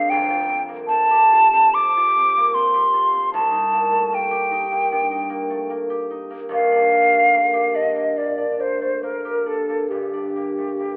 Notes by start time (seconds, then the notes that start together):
Already playing: G#1 G#2 D#3 C4 D4 G#4 F5
0.10 F1 F2 G5
0.30 F4
0.49 C4
0.68 A#3
0.88 C4 A5
1.11 G4
1.33 F4
1.53 C4
1.74 C3 D6
1.97 F4
2.18 C4
2.37 A#3
2.54 C4 C6
2.74 G4
2.94 F4
3.13 C4
3.34 C2 A5
3.52 D#4
3.73 A#3
3.91 A3
4.12 A#3 G5
4.31 G4
4.51 D#4
4.71 A#3
4.92 G2
5.11 D#4
5.29 A#3
5.50 A3
5.70 A#3
5.90 G4
6.10 D#4
6.30 A#3
6.49 D#1 D#2
6.54 F5
6.71 D4
6.92 A#3
7.13 A3
7.34 A#3
7.54 G4
7.74 D4 D#5
7.95 A#3
8.17 A#2 D5
8.38 D4
8.59 A#3 C5
8.81 A3
9.03 A#3 A#4
9.25 G4
9.46 D4 A4
9.69 A#3
9.90 G1 G2 G4
10.13 D4
10.36 A#3
10.58 A3
10.79 A#3